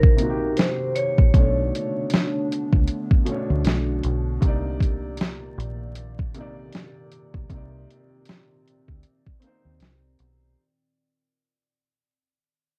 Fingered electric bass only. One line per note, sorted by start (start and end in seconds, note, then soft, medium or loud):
0.00 0.53 A#1 medium
1.18 1.33 A#1 medium
1.34 1.70 B1 loud
2.73 2.87 C#2 medium
3.50 3.64 D2 loud
3.65 4.01 B1 medium
4.04 4.39 B1 medium
4.42 5.53 C2 loud
5.58 6.69 A#1 medium
7.34 7.48 B1 medium
7.50 7.85 C2 loud
8.88 9.02 D2 medium
9.65 9.79 D#2 medium
9.81 10.16 C2 medium
10.20 10.55 B1 medium